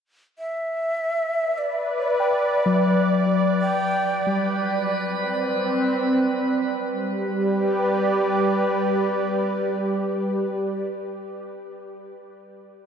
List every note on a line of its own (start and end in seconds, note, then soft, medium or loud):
0.39 1.59 E5 medium
1.31 6.84 D5 medium
1.42 3.61 B4 medium
1.58 1.98 D5 medium
1.98 3.16 D5 medium
2.20 4.60 G5 soft
2.66 4.42 F#3 medium
2.83 5.22 F#6 soft
3.60 6.86 B4 medium
3.60 4.38 G5 loud
3.60 6.85 B5 medium
4.26 6.68 G3 medium
5.04 6.84 C4 medium
6.83 10.82 G3 medium
6.83 11.53 B4 soft
6.97 10.83 G4 medium
7.07 10.82 B4 medium
7.18 10.81 D5 medium